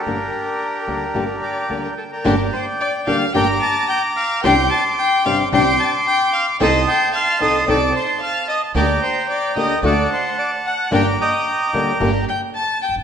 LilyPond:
<<
  \new Staff \with { instrumentName = "Bandoneon" } { \time 4/4 \key g \minor \tempo 4 = 111 << { bes'2~ bes'8 d'''8. bes''16 a''16 bes''16~ | bes''8 c'''8 d'''8 f'''8 g'''8 a'''8 g'''8 f'''8 | g'''8 a'''8 g'''8 f'''8 g'''8 a'''8 g'''8 f'''8 | ees'''8 g'''8 f'''8 ees'''8 d'''8 c'''8 f'''8 ees'''8 |
d'''8 c'''8 d'''8 ees'''8 d'''8 c'''8 d'''8 fis'''8 | g'''8 ees'''4 r4 g'''8 a'''8 g'''8 | } \\ { <d' g'>2~ <d' g'>8 <g'' bes''>4~ <g'' bes''>16 <d'' g''>16~ | <d'' g''>4.~ <d'' g''>16 r16 <bes'' d'''>2 | <c''' d'''>2 <c''' d'''>2 | <a'' c'''>2 a''2 |
<g'' bes''>2 <fis'' a''>2 | <bes'' d'''>8 <g'' bes''>2 r4. | } >> }
  \new Staff \with { instrumentName = "Violin" } { \time 4/4 \key g \minor bes'2~ bes'8 d''8. bes'16 a'16 bes'16~ | bes'8 c''8 d''8 f''8 g''8 a''8 g''8 f''8 | g''8 a''8 g''8 f''8 g''8 a''8 g''8 f''8 | ees''8 g''8 f''8 ees''8 d''8 c''8 f''8 ees''8 |
d''8 c''8 d''8 ees''8 d''8 c''8 d''8 fis''8 | g''8 ees''4 r4 g''8 a''8 g''8 | }
  \new Staff \with { instrumentName = "String section" } { \time 4/4 \key g \minor r1 | <bes d' g'>8 r4 <bes d' g'>8 <bes d' g'>8 r4. | <c' d' g'>8 r4 <c' d' g'>8 <c' d' g'>8 r4. | <c' ees' a'>8 r4 <c' ees' a'>8 <c' ees' a'>8 r4. |
<bes d' g'>8 r4 <bes d' g'>8 <a d' fis'>8 r4. | <bes d' g'>8 r4 <bes d' g'>8 <bes d' g'>8 r4. | }
  \new Staff \with { instrumentName = "Nylon-string guitar" } { \time 4/4 \key g \minor <d g bes d' g'>8 r4 <d g bes d' g'>8 <d g bes d' g'>8 r8 <d g bes d' g'>8 r8 | <d g bes d' g'>8 r4 <d g bes d' g'>8 <d g bes d' g'>8 r4. | <c g c' d' g'>8 r4 <c g c' d' g'>8 <c g c' d' g'>8 r4. | <c' ees' a'>8 r4 <c' ees' a'>8 <c' ees' a'>8 r4. |
<d bes d' g'>8 r4 <d bes d' g'>8 <d a d' fis'>8 r4. | <d g bes d' g'>8 r4 <d g bes d' g'>8 <d g bes d' g'>8 r4. | }
  \new Staff \with { instrumentName = "Upright bass" } { \clef bass \time 4/4 \key g \minor g,,16. r4 r32 d,16. r32 g,,16. r8 r32 d,16. r8 r32 | g,,16. r4 r32 d,16. r32 g,,16. r4. r32 | c,16. r4 r32 g,,16. r32 c,16. r4. r32 | c,16. r4 r32 c,16. r32 c,16. r4. r32 |
d,16. r4 r32 d,16. r32 d,16. r4. r32 | g,,16. r4 r32 d,16. r32 g,,16. r4 r16 fis,,32 g,,32 r32 | }
>>